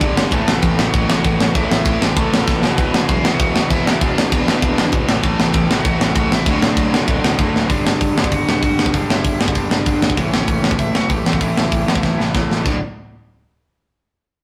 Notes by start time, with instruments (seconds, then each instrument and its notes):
Already playing: overdriven electric guitar G2 D3 G3
0.00 picked electric bass B1, distorted electric guitar G2 D3 G3, kick, crash
0.16 picked electric bass G1, snare
0.31 picked electric bass A1, overdriven electric guitar A2 E3 A3, distorted electric guitar A2 E3 A3, lead electric guitar A4, kick, crash
0.35 lead electric guitar A5
0.47 picked electric bass A1, snare
0.55 lead electric guitar G4 G5
0.62 picked electric bass E2, kick, crash
0.78 picked electric bass A1, distorted electric guitar A2 E3 A3, snare
0.87 lead electric guitar F#4 F#5
0.93 picked electric bass A1, overdriven electric guitar A2 E3 A3, kick, crash
1.09 picked electric bass A1, snare
1.23 picked electric bass A1, distorted electric guitar A2 E3 A3, lead electric guitar F#4 F#5, kick, crash
1.39 picked electric bass A1, snare
1.54 picked electric bass A1, overdriven electric guitar A2 E3, distorted electric guitar A2 E3 A3, lead electric guitar E4 E5, kick, crash
1.58 overdriven electric guitar A3
1.70 picked electric bass A1, lead electric guitar E4 E5, snare
1.85 picked electric bass A1, kick, crash
1.99 picked electric bass A1, distorted electric guitar A2 E3 A3, lead electric guitar G4 G5, snare
2.16 picked electric bass A1, overdriven electric guitar A2 E3, lead electric guitar A4 A5, kick, crash
2.20 overdriven electric guitar A3
2.32 picked electric bass A1, snare
2.46 picked electric bass C#2, distorted electric guitar A2 E3 A3, kick, snare
2.61 picked electric bass E1, distorted electric guitar E2 B2 E3, overdriven electric guitar E2 B2, snare
2.65 overdriven electric guitar E3
2.78 picked electric bass E1, lead electric guitar B4 B5, kick, crash
2.94 picked electric bass E1, snare
3.02 lead electric guitar G#4 G#5
3.08 picked electric bass B1, distorted electric guitar E2 B2 E3, kick, crash
3.23 picked electric bass E1, overdriven electric guitar E2 B2 E3, snare
3.32 lead electric guitar F#4 F#5
3.39 picked electric bass E1, lead electric guitar F#4 F#5, kick, crash
3.54 picked electric bass E1, distorted electric guitar E2 B2 E3, snare
3.70 picked electric bass E1, lead electric guitar E4 E5, kick, crash
3.85 picked electric bass E1, overdriven electric guitar E2 B2 E3, distorted electric guitar E2 B2 E3, snare
4.01 picked electric bass E1, lead electric guitar D4 D5, kick, crash
4.15 picked electric bass E1, snare
4.31 picked electric bass E1, distorted electric guitar E2 B2 E3, lead electric guitar D4 D5, kick, crash
4.45 picked electric bass E1, overdriven electric guitar B2 E3, snare
4.50 overdriven electric guitar E2
4.62 picked electric bass E1, kick, crash
4.77 picked electric bass E1, distorted electric guitar E2 B2 E3, snare
4.92 picked electric bass G#1, kick, crash
5.06 picked electric bass A1, overdriven electric guitar A2 E3 A3, distorted electric guitar A2 E3 A3, snare
5.23 picked electric bass A1, lead electric guitar A4 A5, kick, crash
5.39 picked electric bass A1, snare
5.48 lead electric guitar G4 G5
5.52 picked electric bass E2, distorted electric guitar A2 E3 A3, kick, crash
5.68 picked electric bass A1, overdriven electric guitar A2 E3 A3, snare
5.79 lead electric guitar F#4 F#5
5.85 picked electric bass A1, kick, crash
5.99 picked electric bass A1, distorted electric guitar A2 E3 A3, snare
6.15 picked electric bass A1, lead electric guitar F#4 F#5, kick, crash
6.30 picked electric bass A1, lead electric guitar E5, snare
6.34 lead electric guitar E4
6.45 picked electric bass D1, overdriven electric guitar D2 A2 D3, distorted electric guitar D2 A2 D3, lead electric guitar F#4 F#5, kick, crash
6.61 picked electric bass D1, lead electric guitar D4 D5, snare
6.76 picked electric bass D1, kick, crash
6.91 picked electric bass D1, distorted electric guitar D2 A2 D3, snare
7.06 picked electric bass D1, overdriven electric guitar D2 A2, kick, crash
7.10 overdriven electric guitar D3
7.23 picked electric bass D1, snare
7.38 picked electric bass F#1, distorted electric guitar D2 A2 D3, kick, crash
7.54 picked electric bass D1, snare
7.68 picked electric bass G1, overdriven electric guitar G2 D3 G3, distorted electric guitar G2 D3, lead electric guitar D4, kick, open hi-hat
7.72 distorted electric guitar G3, lead electric guitar D5
7.86 lead electric guitar D4 D5, snare
8.01 picked electric bass G1, kick, open hi-hat
8.15 picked electric bass G1, distorted electric guitar G2 D3 G3, snare
8.24 kick
8.32 picked electric bass G1, lead electric guitar F#4 F#5, kick, open hi-hat
8.46 picked electric bass D1, overdriven electric guitar G2 D3 G3, snare
8.61 picked electric bass G1, overdriven electric guitar G2 D3 G3, lead electric guitar F#4 F#5, kick, open hi-hat
8.77 picked electric bass G1, snare
8.86 kick
8.92 picked electric bass G1, distorted electric guitar G2 D3 G3, overdriven electric guitar G2 D3, lead electric guitar D4 D5, kick, open hi-hat
8.96 overdriven electric guitar G3
9.08 picked electric bass G1, lead electric guitar E4 E5, snare
9.24 picked electric bass G1, kick, open hi-hat
9.39 picked electric bass G1, distorted electric guitar G2 D3 G3, lead electric guitar D4 D5, snare
9.48 kick
9.55 picked electric bass G1, lead electric guitar D4 D5, kick, open hi-hat
9.70 picked electric bass G1, overdriven electric guitar G2 D3 G3, snare
9.85 picked electric bass G1, overdriven electric guitar G2 D3 G3, kick, open hi-hat
10.02 picked electric bass G1, snare
10.10 kick
10.16 picked electric bass A1, overdriven electric guitar A2 E3, distorted electric guitar A2 E3 A3, lead electric guitar C#4 C#5, kick, open hi-hat
10.20 overdriven electric guitar A3
10.32 lead electric guitar C#4 C#5, snare
10.48 picked electric bass A1, kick, open hi-hat
10.62 picked electric bass A1, distorted electric guitar A2 E3 A3, snare
10.71 kick
10.78 picked electric bass A1, lead electric guitar E4 E5, kick, open hi-hat
10.93 picked electric bass E1, overdriven electric guitar A2 E3 A3, lead electric guitar F#4 F#5, snare
11.09 picked electric bass A1, overdriven electric guitar A2 E3 A3, lead electric guitar G4 G5, kick, open hi-hat
11.25 picked electric bass A1, snare
11.33 lead electric guitar F#4 F#5, kick
11.40 picked electric bass A1, distorted electric guitar A2 E3 A3, overdriven electric guitar A2 E3, lead electric guitar E4 E5, kick, open hi-hat
11.44 overdriven electric guitar A3
11.56 picked electric bass A1, snare
11.72 picked electric bass A1, kick, open hi-hat
11.85 picked electric bass A1, distorted electric guitar A2 E3 A3, snare
11.95 kick
12.03 picked electric bass A1, kick, snare
12.18 picked electric bass A1, overdriven electric guitar A2 E3 A3, snare
12.34 picked electric bass A1, overdriven electric guitar A2 E3 A3, kick, snare
12.49 picked electric bass A1, snare
12.65 picked electric bass D1, distorted electric guitar D2 A2 D3, overdriven electric guitar D2 A2 D3, lead electric guitar D5, kick, crash